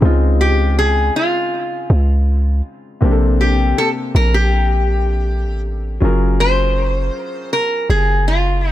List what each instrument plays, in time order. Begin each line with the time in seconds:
0.00 808-style bass C#2, grand piano C#3 G#3 C4 D#4
0.05 grand piano F4
0.41 resonator guitar played with a steel bar G4
0.79 resonator guitar played with a steel bar G#4
1.16 resonator guitar played with a steel bar F4
1.90 808-style bass C#2
3.01 808-style bass A#1, grand piano C3 A#3 C4 D4
3.05 grand piano G4
3.11 grand piano A4
3.41 resonator guitar played with a steel bar G4
3.78 resonator guitar played with a steel bar A4
4.15 808-style bass A#1, resonator guitar played with a steel bar A#4
4.34 resonator guitar played with a steel bar G4
5.46 808-style bass A1
6.00 808-style bass F#1, grand piano F#3 C#4 F4 G#4
6.05 grand piano A#4
6.40 resonator guitar played with a steel bar C5
7.53 resonator guitar played with a steel bar A#4
7.90 808-style bass F#1, resonator guitar played with a steel bar G#4
8.28 resonator guitar played with a steel bar F4